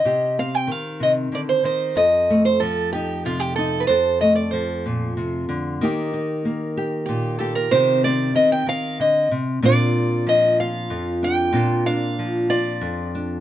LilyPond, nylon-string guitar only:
\new Staff \with { instrumentName = "Nylon-string guitar" } { \time 6/8 \key bes \major \tempo 4. = 63 << { g'8 c'2~ c'8 | a'8 a4 ees'4 ees'8 | a'8 a2~ a8 | <bes ees' g'>8 ees'4 g'4 g'8 |
<ees c' g'>8 c'2~ c'8 | <c' d' f'>4. f'4 d'8 | <c' d' f'>8 d'4 f'4 d'8 | } \\ { c4 ees8 c8 d8 ees8 | f,4 f4 c4 | f,4 f8 bes,8 c8 d8 | ees4 bes4 bes,4 |
c4 ees8 ees8 d8 c8 | bes,4 f4 f,4 | bes,4 f4 f,4 | } >> }